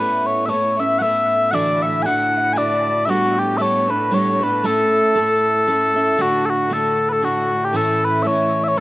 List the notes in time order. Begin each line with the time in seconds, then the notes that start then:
Already playing: A2 A3 B3 C#4 E4 B4
0.27 C#5
0.46 A3 B3 C#4 C#5 E5
0.50 E4
0.76 B3 C#4 E4 E5
0.98 A3 B3 C#4 E4 E5 F#5
1.51 A2 D3 E3 D4 E4 F#4 D5 F#5
1.81 E5 F#5
1.86 E5
2.02 D3 D4 F#4 F#5 G#5
2.07 E4
2.19 F#5 G5
2.37 E5 F#5
2.53 D3 D4 E4 F#4 D5 G#5
2.58 D5
3.06 G3 B3 D4 F#4 A4 E5
3.10 F#4
3.36 G4
3.58 G3 B3 D4 A4 C#5 E5
3.62 C#5
3.87 B3 D4 A4 B4
4.10 G3 B3 D4 A4 C#5
4.14 C#5
4.39 B3 A4 B4
4.43 D4 B4
4.62 A2 A3 C#4 E4 A4
5.15 A3 C#4 E4 A4
5.67 A3 C#4 E4 A4
5.95 C#4 E4 A4
6.17 A2 D3 A3 D4 F#4
6.46 F#4 A4
6.50 F#4
6.69 D3 A3 D4 F#4 A4
7.09 A4 B4
7.21 D3 A3 D4 F#4
7.59 F#4 G4
7.65 G4
7.73 A2 E3 A3 C#4 E4 A4
8.03 B4
8.23 E3 A3 C#4 E4 C#5 E5
8.27 C#5
8.64 C#5 E5
8.68 C#5
8.77 E3